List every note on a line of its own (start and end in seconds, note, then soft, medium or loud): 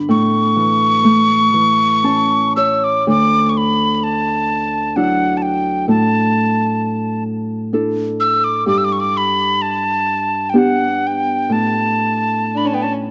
0.00 0.12 G2 medium
0.00 0.12 D3 soft
0.00 1.31 B3 soft
0.00 1.93 D4 medium
0.09 3.11 A2 soft
0.09 2.53 C#6 medium
0.56 1.53 E3 soft
1.04 4.37 A3 soft
1.54 3.11 E3 soft
2.04 3.13 C#4 soft
2.04 3.49 A5 medium
2.56 3.13 C#5 medium
2.56 2.85 E6 medium
2.84 3.07 D6 medium
3.07 5.93 D2 soft
3.07 3.51 D6 medium
3.49 3.59 C#6 soft
3.57 3.95 B5 medium
3.95 4.05 B5 soft
4.04 4.98 A5 medium
4.96 5.93 F#3 soft
4.96 7.72 D4 soft
4.96 7.58 E4 soft
4.96 5.39 F#5 medium
5.37 5.44 A5 soft
5.42 5.88 G5 medium
5.88 8.71 A2 soft
5.88 7.23 A5 medium
7.73 10.53 D4 soft
7.73 10.34 E4 soft
7.73 9.93 A4 soft
8.20 8.46 E6 medium
8.44 8.67 D6 medium
8.66 11.54 G2 soft
8.66 8.79 D6 medium
8.78 8.86 E6 medium
8.85 8.94 D6 medium
8.92 9.01 C#6 medium
9.00 9.19 D6 medium
9.17 9.63 B5 medium
9.62 10.51 A5 medium
10.50 13.11 B3 soft
10.50 10.60 G5 medium
10.54 13.11 D4 soft
10.54 12.90 G4 soft
10.58 11.08 F#5 medium
11.07 11.54 G5 medium
11.49 13.11 A2 soft
11.49 12.59 A5 medium
12.55 12.67 D4 soft
12.55 12.69 B5 soft
12.65 12.75 C#4 soft
12.65 12.76 A5 soft
12.73 12.85 B3 soft
12.73 12.84 G5 soft
12.82 12.93 C#4 soft
12.82 12.92 A5 medium